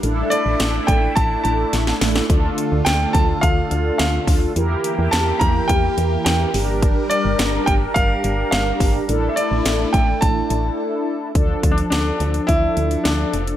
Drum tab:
HH |x-x-x-x-x-x-x-o-|x-x-x-x-x-x-x-o-|x-x-x-x-x-x-x-o-|x-x-x-x-x-x-x-o-|
SD |----o-------oooo|----o-------o---|----o-------o---|----o-------o---|
BD |------o-o-------|o-----o-o-----o-|------o-o-------|o-----o-o-----o-|

HH |x-x-x-x-x-x-----|x-xxx-xxx-xxx-xx|
SD |----o-----------|----o-------o---|
BD |------o-o-------|o-o-----o-------|